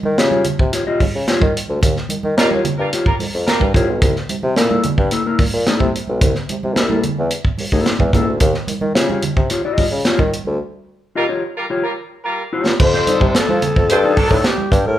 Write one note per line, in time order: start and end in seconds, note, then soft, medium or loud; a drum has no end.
0.03 0.17 D#3 loud
0.03 high conga medium
0.18 0.43 C#3 loud
0.18 0.28 F4 medium
0.18 0.29 G4 medium
0.18 0.29 C#5 medium
0.18 snare loud
0.18 closed hi-hat medium
0.18 muted conga soft
0.31 0.45 F4 medium
0.31 0.45 G4 medium
0.31 0.45 C#5 medium
0.31 high conga medium
0.44 closed hi-hat medium
0.44 low conga medium
0.59 0.71 C3 medium
0.59 kick loud
0.72 0.82 F4 medium
0.72 0.83 G4 medium
0.72 0.83 C#5 medium
0.72 snare soft
0.72 closed hi-hat medium
0.72 muted conga soft
0.86 1.00 F4 medium
0.86 1.00 G4 medium
0.86 0.99 D#5 medium
0.86 muted conga soft
1.00 1.06 C#3 medium
1.00 kick medium
1.00 open hi-hat medium
1.00 high conga medium
1.15 1.27 C#3 medium
1.27 1.41 F4 medium
1.27 1.41 G4 medium
1.27 1.41 C#5 medium
1.27 snare medium
1.27 closed hi-hat medium
1.27 muted conga soft
1.41 1.54 D#3 medium
1.41 kick loud
1.41 high conga medium
1.57 closed hi-hat medium
1.68 1.81 D2 medium
1.68 high conga medium
1.81 1.94 D#2 medium
1.81 kick loud
1.81 closed hi-hat loud
1.81 low conga medium
1.96 snare soft
1.96 muted conga soft
2.09 2.15 D#3 soft
2.09 closed hi-hat medium
2.09 high conga medium
2.23 2.36 D#3 medium
2.23 high conga medium
2.37 2.61 D#2 medium
2.37 2.46 G3 medium
2.37 2.47 F4 medium
2.37 2.46 F4 loud
2.37 2.47 G4 medium
2.37 2.46 A#4 loud
2.37 2.48 D#5 medium
2.37 snare loud
2.37 closed hi-hat loud
2.37 muted conga soft
2.51 2.65 F4 medium
2.51 2.64 G4 medium
2.51 2.64 C#5 medium
2.51 muted conga soft
2.51 high conga medium
2.64 closed hi-hat medium
2.64 low conga medium
2.78 2.91 G2 medium
2.78 2.87 G3 medium
2.78 2.87 F4 medium
2.78 2.87 A#4 medium
2.93 3.05 F4 medium
2.93 3.05 G4 medium
2.93 3.06 C#5 medium
2.93 snare soft
2.93 closed hi-hat medium
3.05 3.15 G3 medium
3.05 3.14 F4 medium
3.05 3.15 A#4 loud
3.05 kick medium
3.05 muted conga soft
3.19 3.25 F2 soft
3.19 open hi-hat medium
3.19 high conga medium
3.35 3.46 F2 medium
3.46 3.64 G3 medium
3.46 3.64 F4 medium
3.46 3.64 A#4 loud
3.46 snare loud
3.46 closed hi-hat medium
3.46 muted conga soft
3.60 3.73 G2 medium
3.60 kick medium
3.60 muted conga soft
3.60 high conga medium
3.74 3.86 C2 medium
3.74 3.87 F4 medium
3.74 3.88 G4 loud
3.74 3.88 C#5 loud
3.74 kick loud
3.74 closed hi-hat medium
3.87 4.00 B1 medium
3.87 high conga medium
4.02 4.14 C2 medium
4.02 kick loud
4.02 closed hi-hat medium
4.02 low conga medium
4.16 snare soft
4.29 4.35 C3 soft
4.29 closed hi-hat medium
4.29 high conga medium
4.43 4.55 C3 loud
4.43 high conga medium
4.56 4.81 A#2 medium
4.56 4.67 A#3 medium
4.56 4.67 E4 medium
4.56 4.67 A4 medium
4.56 snare loud
4.56 closed hi-hat medium
4.56 muted conga soft
4.71 4.84 A#3 medium
4.71 4.83 E4 medium
4.71 4.83 A4 medium
4.71 muted conga soft
4.71 high conga medium
4.83 closed hi-hat medium
4.83 low conga medium
4.98 5.10 G2 medium
4.98 kick medium
5.11 5.22 A#3 medium
5.11 5.22 E4 medium
5.11 5.22 A4 medium
5.11 snare soft
5.11 closed hi-hat medium
5.26 5.39 A#3 medium
5.26 5.39 E4 medium
5.26 5.39 A#4 medium
5.26 muted conga soft
5.39 5.45 A#2 soft
5.39 kick loud
5.39 open hi-hat medium
5.39 high conga medium
5.54 5.65 A#2 medium
5.67 5.87 A#3 medium
5.67 5.87 E4 medium
5.67 5.87 A4 medium
5.67 snare loud
5.67 closed hi-hat medium
5.67 muted conga soft
5.80 5.92 C3 loud
5.80 kick medium
5.80 muted conga soft
5.80 high conga medium
5.95 closed hi-hat medium
6.07 6.20 B1 medium
6.07 high conga medium
6.21 6.34 C2 loud
6.21 kick loud
6.21 closed hi-hat loud
6.21 muted conga soft
6.21 low conga medium
6.35 snare soft
6.35 muted conga soft
6.49 6.56 C3 soft
6.49 closed hi-hat medium
6.49 high conga medium
6.63 6.79 C3 medium
6.63 high conga medium
6.75 7.01 C2 medium
6.75 6.86 A#3 medium
6.75 6.86 E4 medium
6.75 6.86 A#4 medium
6.75 snare loud
6.75 closed hi-hat medium
6.75 muted conga soft
6.90 7.03 A#3 medium
6.90 7.03 E4 medium
6.90 7.03 A4 medium
6.90 muted conga soft
6.90 high conga medium
7.03 closed hi-hat medium
7.03 low conga medium
7.19 7.30 E2 medium
7.30 closed hi-hat medium
7.30 muted conga soft
7.44 kick medium
7.44 muted conga soft
7.58 7.65 D#2 soft
7.58 open hi-hat medium
7.58 high conga medium
7.72 7.84 D#2 medium
7.72 7.93 A#3 medium
7.72 7.93 E4 medium
7.72 7.92 A4 medium
7.72 kick medium
7.86 snare medium
7.86 closed hi-hat medium
7.99 8.12 E2 loud
7.99 kick medium
7.99 muted conga soft
7.99 high conga medium
8.13 8.25 C#2 medium
8.13 8.27 A#3 medium
8.13 8.27 E4 medium
8.13 8.27 A4 loud
8.13 kick loud
8.13 closed hi-hat medium
8.25 8.39 D2 medium
8.25 high conga medium
8.40 8.53 D#2 loud
8.40 kick loud
8.40 closed hi-hat loud
8.40 low conga medium
8.53 snare soft
8.53 muted conga soft
8.67 8.74 D#3 soft
8.67 closed hi-hat medium
8.67 high conga medium
8.81 8.94 D#3 medium
8.81 high conga medium
8.95 9.19 C#3 medium
8.95 9.06 F4 medium
8.95 9.06 G4 medium
8.95 9.06 C#5 medium
8.95 snare loud
8.95 closed hi-hat medium
8.95 muted conga soft
9.09 9.23 F4 medium
9.09 9.23 G4 medium
9.09 9.22 C#5 medium
9.09 muted conga soft
9.09 high conga medium
9.22 closed hi-hat medium
9.22 low conga medium
9.37 9.49 C3 medium
9.37 kick medium
9.50 9.61 F4 medium
9.50 9.61 G4 medium
9.50 9.61 C#5 medium
9.50 snare soft
9.50 closed hi-hat medium
9.50 muted conga soft
9.64 9.85 F4 medium
9.64 9.85 G4 medium
9.64 9.85 D#5 medium
9.64 muted conga soft
9.77 9.84 C#3 soft
9.77 kick medium
9.77 open hi-hat medium
9.77 high conga medium
9.92 10.04 C#3 medium
10.05 10.19 F4 medium
10.05 10.19 G4 medium
10.05 10.19 C#5 medium
10.05 snare loud
10.05 closed hi-hat medium
10.18 10.31 D#3 medium
10.18 kick medium
10.18 high conga medium
10.33 closed hi-hat medium
10.45 10.59 D2 medium
10.45 high conga medium
11.15 11.25 G3 medium
11.15 11.26 F4 medium
11.15 11.24 F4 loud
11.15 11.26 G4 medium
11.15 11.25 A#4 medium
11.15 11.26 D#5 medium
11.29 11.42 F4 medium
11.29 11.42 G4 medium
11.29 11.42 C#5 medium
11.56 11.65 G3 medium
11.56 11.65 F4 medium
11.56 11.65 A#4 medium
11.70 11.83 F4 medium
11.70 11.83 G4 medium
11.70 11.84 C#5 medium
11.83 11.92 G3 medium
11.83 11.92 F4 medium
11.83 11.92 A#4 medium
12.23 12.42 G3 medium
12.23 12.42 F4 medium
12.23 12.42 A#4 loud
12.53 12.73 F4 medium
12.53 12.73 G4 medium
12.53 12.73 C#5 medium
12.66 snare medium
12.80 13.16 F2 loud
12.80 13.38 C5 loud
12.80 kick loud
12.80 crash loud
12.80 low conga medium
12.93 13.01 A3 medium
12.93 13.01 G4 medium
12.93 13.02 C5 medium
12.93 snare soft
12.93 muted conga soft
13.07 13.21 D#4 medium
13.07 13.21 A4 medium
13.07 13.21 D5 medium
13.07 closed hi-hat medium
13.07 high conga medium
13.20 13.33 C3 loud
13.20 13.59 D#3 medium
13.20 13.59 D4 medium
13.20 13.59 A4 medium
13.20 kick medium
13.20 high conga medium
13.35 13.41 F3 medium
13.35 13.90 A4 loud
13.35 snare loud
13.35 closed hi-hat medium
13.35 muted conga soft
13.49 13.61 F3 medium
13.49 muted conga soft
13.49 high conga loud
13.62 closed hi-hat medium
13.62 low conga medium
13.76 13.88 F2 medium
13.76 kick medium
13.89 14.15 G2 loud
13.89 13.98 A3 medium
13.89 13.98 G4 medium
13.89 14.48 A4 loud
13.89 13.98 C5 loud
13.89 closed hi-hat medium
13.89 muted conga soft
14.03 14.17 D#4 medium
14.03 14.17 A4 medium
14.03 14.16 D5 medium
14.03 muted conga soft
14.16 14.38 D#3 loud
14.16 14.39 D4 loud
14.16 14.39 A4 loud
14.16 kick loud
14.16 open hi-hat medium
14.16 high conga medium
14.31 14.43 A2 medium
14.31 14.41 D#4 medium
14.31 14.41 A4 medium
14.31 14.41 D5 medium
14.31 kick medium
14.44 14.73 G4 medium
14.44 snare loud
14.44 closed hi-hat medium
14.44 muted conga soft
14.58 high conga medium
14.72 14.84 G2 loud
14.72 14.88 G4 medium
14.72 kick loud
14.72 closed hi-hat medium
14.85 14.98 A2 medium
14.85 14.99 A#4 medium
14.85 high conga medium